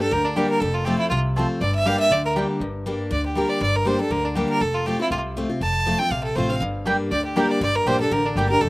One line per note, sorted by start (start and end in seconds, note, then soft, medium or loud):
0.00 0.12 D4 medium
0.00 0.11 G4 medium
0.00 0.14 A4 medium
0.11 0.43 D2 medium
0.11 0.59 D3 medium
0.11 0.26 A#4 medium
0.25 0.38 D4 medium
0.36 0.60 G3 medium
0.36 0.46 A#3 medium
0.36 0.61 A#3 medium
0.36 0.61 D4 medium
0.36 0.46 G4 medium
0.36 0.49 G4 medium
0.36 0.61 G4 medium
0.36 0.46 D5 loud
0.36 0.46 G5 medium
0.49 0.62 A#4 loud
0.60 0.93 F1 medium
0.60 1.09 F2 loud
0.60 0.76 A4 medium
0.74 0.86 F4 medium
0.85 1.10 F3 medium
0.85 1.10 A3 medium
0.85 0.96 C4 medium
0.85 1.11 C4 medium
0.85 0.96 F4 medium
0.85 1.11 F4 medium
0.85 0.98 G4 medium
0.85 0.96 C5 medium
0.85 0.96 A5 medium
0.99 1.09 E4 medium
1.09 1.43 C2 medium
1.09 1.59 C3 medium
1.09 1.18 F4 medium
1.36 1.61 F3 medium
1.36 1.61 A3 medium
1.36 1.46 C4 medium
1.36 1.61 C4 medium
1.36 1.46 F4 medium
1.36 1.62 F4 medium
1.36 1.46 C5 medium
1.36 1.46 A5 medium
1.61 1.93 G1 medium
1.61 2.09 G2 medium
1.61 1.74 D5 medium
1.75 1.88 E5 medium
1.85 2.10 G3 medium
1.85 1.96 A#3 medium
1.85 2.10 A#3 medium
1.85 2.10 D4 medium
1.85 1.96 G4 medium
1.85 2.11 G4 medium
1.85 1.96 D5 medium
1.85 1.99 F5 loud
1.85 1.96 G5 medium
2.00 2.13 E5 loud
2.10 2.43 D2 medium
2.10 2.58 D3 medium
2.10 2.24 D5 medium
2.25 2.32 A#4 medium
2.36 2.60 G3 medium
2.36 2.46 A#3 medium
2.36 2.60 A#3 medium
2.36 2.61 D4 medium
2.36 2.46 G4 medium
2.36 2.61 G4 medium
2.36 2.46 D5 medium
2.36 2.46 G5 loud
2.60 2.93 G1 medium
2.60 3.09 G2 medium
2.86 3.10 G3 medium
2.86 3.10 A#3 medium
2.86 3.10 D4 medium
2.86 3.11 G4 medium
3.11 3.43 D2 medium
3.11 3.59 D3 medium
3.11 3.24 D5 medium
3.26 3.38 G4 soft
3.35 3.60 G3 medium
3.35 3.60 A#3 medium
3.35 3.60 D4 medium
3.35 3.61 G4 medium
3.35 3.51 A#4 medium
3.49 3.61 D5 medium
3.60 3.93 G1 medium
3.60 4.08 G2 medium
3.60 3.77 D5 medium
3.76 3.89 A#4 medium
3.85 3.98 G3 medium
3.85 3.99 A#3 medium
3.85 3.99 D4 medium
3.85 3.97 G4 medium
3.85 4.00 C5 loud
3.99 4.11 D4 soft
3.99 4.10 G4 medium
3.99 4.13 A4 medium
4.10 4.43 D2 medium
4.10 4.59 D3 medium
4.10 4.26 A#4 medium
4.25 4.37 D4 medium
4.35 4.60 G3 medium
4.35 4.60 A#3 medium
4.35 4.60 D4 medium
4.35 4.49 G4 medium
4.35 4.60 G4 medium
4.49 4.63 A#4 loud
4.60 4.93 F1 medium
4.60 5.08 F2 medium
4.60 4.76 A4 medium
4.75 4.88 F4 medium
4.86 4.99 F3 medium
4.86 4.99 A3 medium
4.86 5.00 C4 medium
4.86 4.98 F4 medium
4.86 5.00 G4 loud
5.00 5.11 C4 medium
5.00 5.11 E4 medium
5.00 5.11 F4 medium
5.11 5.43 C2 medium
5.11 5.59 C3 loud
5.11 5.19 F4 medium
5.37 5.49 F3 medium
5.37 5.49 A3 medium
5.37 5.49 C4 medium
5.37 5.48 F4 medium
5.49 5.61 C4 medium
5.49 5.61 F4 medium
5.61 5.93 F1 medium
5.61 6.09 F2 medium
5.61 6.00 A5 medium
5.86 5.99 F3 medium
5.86 5.99 A3 medium
5.86 6.00 C4 medium
5.86 5.98 F4 medium
5.99 6.11 C4 medium
5.99 6.11 F4 medium
5.99 6.13 G5 loud
6.11 6.32 A#1 medium
6.11 6.59 C3 medium
6.11 6.23 F5 medium
6.24 6.37 A4 medium
6.36 6.57 A1 medium
6.36 6.49 F3 medium
6.36 6.49 A3 medium
6.36 6.50 C4 medium
6.36 6.49 F4 medium
6.36 6.51 C5 medium
6.50 6.62 C4 soft
6.50 6.61 F4 medium
6.50 6.61 F5 medium
6.61 6.93 G1 medium
6.61 7.09 G2 medium
6.85 7.10 G3 medium
6.85 6.95 A#3 medium
6.85 7.10 A#3 medium
6.85 7.10 D4 medium
6.85 6.96 G4 medium
6.85 7.11 G4 medium
6.85 6.96 D5 medium
6.85 6.96 G5 medium
7.11 7.43 D2 medium
7.11 7.59 D3 medium
7.11 7.24 D5 medium
7.25 7.39 G4 soft
7.36 7.60 G3 medium
7.36 7.46 A#3 medium
7.36 7.60 A#3 medium
7.36 7.60 D4 medium
7.36 7.46 G4 medium
7.36 7.61 G4 loud
7.36 7.52 A#4 medium
7.36 7.46 D5 loud
7.36 7.46 G5 loud
7.51 7.62 D5 medium
7.61 7.77 G1 medium
7.61 8.09 G2 medium
7.61 7.77 D5 medium
7.76 7.89 A#4 medium
7.86 8.07 A#1 medium
7.86 7.99 G3 medium
7.86 7.96 A#3 medium
7.86 8.00 A#3 medium
7.86 8.00 D4 medium
7.86 7.96 G4 medium
7.86 7.99 G4 medium
7.86 8.00 C5 loud
7.86 7.96 D5 medium
7.86 7.96 G5 medium
8.00 8.12 D4 medium
8.00 8.11 G4 medium
8.00 8.14 A4 medium
8.11 8.32 A1 medium
8.11 8.59 D3 loud
8.11 8.27 A#4 medium
8.26 8.38 D4 medium
8.36 8.57 G1 medium
8.36 8.49 G3 medium
8.36 8.46 A#3 medium
8.36 8.50 A#3 medium
8.36 8.50 D4 medium
8.36 8.49 G4 medium
8.36 8.46 G4 medium
8.36 8.49 G4 medium
8.36 8.47 D5 medium
8.36 8.47 G5 loud
8.49 8.62 D4 medium
8.49 8.61 G4 medium
8.49 8.63 A#4 loud
8.61 8.69 F1 medium
8.61 8.69 F2 medium
8.61 8.69 A4 medium